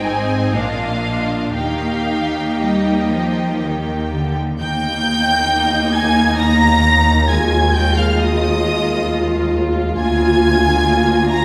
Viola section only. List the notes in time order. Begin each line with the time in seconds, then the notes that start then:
Already playing: D#4
0.04 C4
0.54 A#3 D4
1.03 D4
1.56 A#3 D#4
4.60 A#3 D#4
7.29 G#3 F4
9.97 A#3